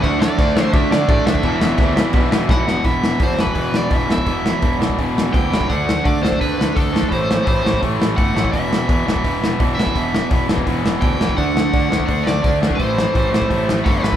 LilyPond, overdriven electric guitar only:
\new Staff \with { instrumentName = "Overdriven electric guitar" } { \time 4/4 \key d \mixolydian \tempo 4 = 169 fis''8 d''4. e''8 d''8 d''8 e''8~ | e''2. fis''4 | e''4 c''8 b'4 d''8 e''8 e''8~ | e''4. r4. g''4 |
fis''4 d''8 c''8 b'4 a'4 | c''4 c''4 r4 fis''4 | e''2.~ e''8 e''8~ | e''4. r4. g''4 |
fis''2 fis''8 d''4 r8 | c''2. <c'' fis''>8 b'8 | }